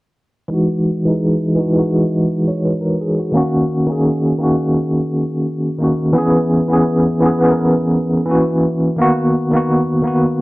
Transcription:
0.48 1.00 E3 medium
0.48 1.00 G#3 medium
0.48 1.01 D#4 medium
0.53 1.02 F#4 loud
1.05 1.53 E3 medium
1.05 1.53 G#3 medium
1.05 1.54 D#4 medium
1.10 1.55 G#4 medium
1.55 1.73 E3 medium
1.55 1.74 G#3 medium
1.55 1.75 D#4 medium
1.60 1.76 F#4 medium
1.74 3.04 E3 medium
1.74 3.05 G#3 medium
1.74 3.06 D#4 medium
1.79 2.29 F#4 medium
2.48 2.62 C#5 medium
2.64 2.82 B4 medium
2.81 2.96 A#4 medium
3.01 3.18 G#4 medium
3.19 3.36 F#4 medium
3.31 3.82 D#3 medium
3.31 3.83 A#3 medium
3.31 3.84 C#4 loud
3.37 3.85 F#4 loud
3.86 4.34 D#3 medium
3.86 4.35 A#3 medium
3.86 4.36 C#4 medium
3.92 4.37 G#4 medium
4.38 5.70 D#3 medium
4.38 5.71 A#3 medium
4.38 5.71 C#4 medium
4.43 5.72 F#4 medium
5.79 6.12 D#3 medium
5.79 6.13 A#3 medium
5.79 6.14 C#4 medium
5.84 6.15 F#4 medium
6.13 6.64 E3 loud
6.13 6.65 B3 medium
6.13 6.66 C#4 medium
6.18 6.67 G#4 loud
6.68 7.16 E3 medium
6.68 7.17 B3 medium
6.68 7.18 C#4 medium
6.73 7.19 G#4 medium
7.20 7.38 E3 medium
7.20 7.40 B3 medium
7.20 7.40 C#4 medium
7.26 7.41 G#4 medium
7.39 8.24 E3 medium
7.39 8.27 B3 medium
7.39 8.28 C#4 medium
7.44 7.48 G#4 medium
7.51 8.32 A#4 medium
8.26 8.92 E3 medium
8.26 8.93 A#3 medium
8.26 8.94 C#4 medium
8.31 8.95 F#4 medium
8.96 9.47 D#3 medium
8.96 9.48 A#3 medium
8.96 9.49 B3 medium
9.01 9.50 F#4 loud
9.51 9.99 D#3 medium
9.51 10.00 A#3 medium
9.51 10.01 B3 medium
9.56 10.02 F#4 medium
10.02 10.41 D#3 medium
10.02 10.41 A#3 medium
10.02 10.41 B3 medium
10.07 10.41 F#4 medium

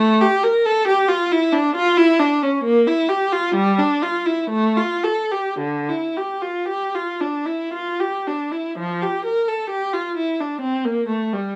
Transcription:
0.00 0.18 A3 medium
0.21 0.43 G4 medium
0.43 0.65 A#4 medium
0.66 0.87 A4 medium
0.87 1.08 G4 medium
1.09 1.30 F4 medium
1.32 1.53 E4 medium
1.53 1.75 D4 medium
1.75 1.97 F4 medium
1.97 2.19 E4 medium
2.20 2.41 D4 medium
2.42 2.64 C#4 medium
2.63 2.85 A#3 medium
2.87 3.08 E4 medium
3.09 3.31 G4 medium
3.32 3.54 F4 medium
3.55 3.77 G3 medium
3.79 4.01 D4 medium
4.03 4.26 F4 medium
4.26 4.50 E4 medium
4.50 4.75 A3 medium
4.77 5.03 F4 medium
5.04 5.31 A4 medium
5.32 5.60 G4 medium
5.59 5.87 D3 medium
5.89 6.16 E4 soft
6.17 6.43 G4 soft
6.42 6.68 F4 soft
6.68 6.94 G4 medium
6.95 7.21 F4 soft
7.21 7.47 D4 soft
7.46 7.73 E4 soft
7.73 7.99 F4 medium
8.00 8.27 G4 soft
8.27 8.53 D4 soft
8.52 8.76 E4 soft
8.78 9.00 F3 medium
9.02 9.24 G4 soft
9.25 9.47 A#4 soft
9.48 9.71 A4 soft
9.70 9.92 G4 medium
9.93 10.16 F4 soft
10.17 10.39 E4 soft
10.40 10.63 D4 soft
10.61 10.84 C4 medium
10.85 11.09 A#3 medium
11.08 11.33 A3 soft
11.33 11.56 G3 soft

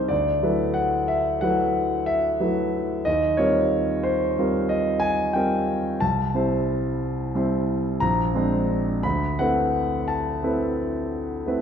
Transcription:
0.00 0.13 G3 soft
0.00 0.13 C4 soft
0.00 0.13 D#4 soft
0.00 0.13 G4 soft
0.00 0.13 A#4 medium
0.00 0.12 C5 medium
0.00 0.12 G5 soft
0.00 0.13 C6 soft
0.00 0.12 D#6 soft
0.00 0.11 G6 soft
0.08 0.42 D2 soft
0.08 0.76 D5 medium
0.43 1.39 F#3 soft
0.43 1.39 A3 soft
0.43 1.39 E4 soft
0.43 1.39 B4 soft
0.74 1.09 F#5 medium
1.08 1.42 E5 medium
1.41 2.37 F#3 soft
1.41 2.37 A3 soft
1.41 2.38 E4 soft
1.41 2.38 B4 soft
1.41 2.08 F#5 medium
2.06 3.05 E5 medium
2.40 3.01 F#3 soft
2.40 3.02 A3 soft
2.40 3.02 E4 soft
2.40 3.02 B4 soft
3.05 3.38 D#2 soft
3.05 3.38 D#5 medium
3.37 4.33 G3 soft
3.37 4.33 C4 soft
3.37 4.33 F4 soft
3.37 4.33 A#4 soft
3.37 4.04 C#5 medium
4.03 4.68 C5 medium
4.39 5.31 G3 soft
4.39 5.31 C4 soft
4.39 5.31 F4 soft
4.39 5.32 A#4 soft
4.69 5.01 D#5 medium
5.00 5.33 G#5 medium
5.33 5.98 G3 soft
5.33 5.98 C4 soft
5.33 5.98 F4 soft
5.33 5.98 A#4 soft
5.33 6.01 G5 medium
6.00 6.34 C2 soft
6.00 8.01 A5 medium
6.34 7.31 G3 soft
6.34 7.31 C4 soft
6.34 7.32 E4 soft
6.34 7.32 C5 soft
7.35 7.98 G3 soft
7.35 7.98 C4 soft
7.35 7.98 E4 soft
7.35 7.98 C5 soft
8.00 8.34 A#1 soft
8.00 9.04 A#5 medium
8.34 9.00 G#3 soft
8.34 9.00 C4 soft
8.34 9.01 D4 soft
8.34 9.01 C5 soft
9.03 9.38 D2 soft
9.03 9.38 B5 medium
9.39 10.39 A3 soft
9.39 10.39 C4 soft
9.39 10.39 E4 soft
9.39 10.39 B4 soft
9.39 10.08 F#5 medium
10.08 10.77 A5 medium
10.43 11.43 A3 soft
10.43 11.43 C4 soft
10.43 11.43 E4 soft
10.43 11.43 B4 soft
11.47 11.61 A3 soft
11.47 11.61 C4 soft
11.47 11.61 E4 soft
11.47 11.61 B4 soft

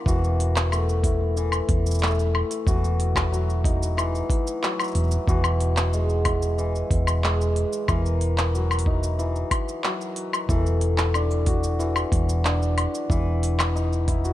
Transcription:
0.00 0.78 A#3 medium
0.00 2.29 C#4 medium
0.06 1.60 E1 loud
0.06 1.36 E3 medium
0.06 2.67 F#4 medium
0.06 kick loud
0.06 shaker medium
0.24 shaker soft
0.40 open hi-hat medium
0.56 clap medium
0.56 shaker medium
0.72 2.02 A3 medium
0.72 low woodblock medium
0.72 shaker medium
0.89 shaker soft
1.04 3.70 E4 medium
1.04 kick loud
1.04 open hi-hat medium
1.37 2.66 E3 medium
1.37 shaker medium
1.52 low woodblock medium
1.52 shaker soft
1.69 2.41 E1 medium
1.69 kick loud
1.69 open hi-hat medium
1.86 shaker medium
1.91 shaker medium
1.95 shaker soft
1.99 5.99 A3 medium
1.99 clap medium
1.99 shaker soft
2.03 shaker medium
2.07 shaker soft
2.15 shaker soft
2.19 shaker soft
2.35 low woodblock medium
2.51 open hi-hat medium
2.51 shaker medium
2.67 4.21 E1 loud
2.67 3.97 E3 medium
2.67 5.28 F#4 medium
2.67 kick loud
2.67 shaker medium
2.84 shaker soft
3.00 open hi-hat medium
3.16 kick medium
3.16 clap medium
3.16 low woodblock medium
3.16 shaker medium
3.32 4.62 F#3 medium
3.32 shaker medium
3.50 shaker soft
3.64 6.33 D#4 medium
3.64 kick loud
3.64 open hi-hat medium
3.83 shaker medium
3.97 5.28 E3 medium
3.97 low woodblock medium
3.97 shaker medium
4.15 shaker soft
4.30 kick loud
4.30 open hi-hat medium
4.47 shaker medium
4.63 8.54 F#3 medium
4.63 clap medium
4.63 shaker medium
4.80 low woodblock medium
4.80 shaker soft
4.84 shaker soft
4.88 shaker soft
4.92 5.16 E1 medium
4.92 open hi-hat medium
4.92 shaker soft
4.96 shaker soft
5.00 shaker soft
5.04 shaker soft
5.07 shaker soft
5.11 shaker medium
5.27 6.82 E1 loud
5.27 6.57 E3 medium
5.27 10.81 F#4 medium
5.27 kick loud
5.27 shaker medium
5.44 low woodblock medium
5.44 shaker soft
5.61 open hi-hat medium
5.77 clap medium
5.77 shaker medium
5.93 7.22 G#3 medium
5.93 shaker medium
6.10 shaker soft
6.25 8.93 E4 medium
6.25 kick loud
6.25 open hi-hat medium
6.25 low woodblock medium
6.42 shaker medium
6.58 7.88 E3 medium
6.58 shaker medium
6.75 shaker soft
6.90 7.63 E1 medium
6.90 kick loud
6.90 open hi-hat medium
7.07 low woodblock medium
7.07 shaker medium
7.23 7.94 G#3 medium
7.23 clap medium
7.23 shaker medium
7.41 shaker soft
7.56 open hi-hat medium
7.73 shaker medium
7.88 9.42 E1 loud
7.88 9.18 E3 medium
7.88 10.56 A#4 medium
7.88 kick loud
7.88 low woodblock medium
7.88 shaker medium
8.06 shaker soft
8.21 open hi-hat medium
8.38 clap medium
8.38 shaker medium
8.54 9.84 F#3 medium
8.54 shaker soft
8.71 low woodblock medium
8.71 shaker soft
8.79 open hi-hat medium
8.86 11.20 D#4 medium
8.86 kick loud
9.03 shaker medium
9.19 10.49 E3 medium
9.19 shaker medium
9.36 shaker soft
9.51 kick loud
9.51 open hi-hat loud
9.51 low woodblock medium
9.69 shaker medium
9.84 14.33 F#3 medium
9.84 clap medium
9.84 shaker soft
10.01 shaker soft
10.16 open hi-hat medium
10.33 low woodblock medium
10.33 shaker medium
10.49 12.03 E1 medium
10.49 11.78 E3 medium
10.49 13.42 A4 medium
10.49 kick loud
10.49 shaker medium
10.66 shaker soft
10.81 open hi-hat medium
10.98 clap medium
10.98 shaker medium
11.14 12.44 D4 medium
11.14 low woodblock medium
11.14 shaker soft
11.31 shaker soft
11.46 14.24 F#4 medium
11.46 kick loud
11.46 open hi-hat loud
11.64 shaker medium
11.79 13.09 E3 medium
11.79 shaker medium
11.96 low woodblock medium
11.96 shaker soft
12.12 12.85 E1 medium
12.12 kick loud
12.12 open hi-hat loud
12.29 shaker medium
12.45 13.81 D4 medium
12.45 clap medium
12.45 shaker medium
12.62 shaker soft
12.78 open hi-hat medium
12.78 low woodblock medium
12.95 shaker medium
13.10 14.33 E1 loud
13.10 14.33 E3 medium
13.10 14.33 B4 medium
13.10 kick loud
13.10 shaker medium
13.43 open hi-hat loud
13.43 shaker soft
13.59 clap medium
13.59 low woodblock medium
13.59 shaker medium
13.75 14.33 D#4 medium
13.75 shaker soft
13.93 shaker soft
14.08 14.33 E4 medium
14.08 kick medium
14.08 open hi-hat loud
14.24 14.33 F#4 medium
14.24 shaker medium

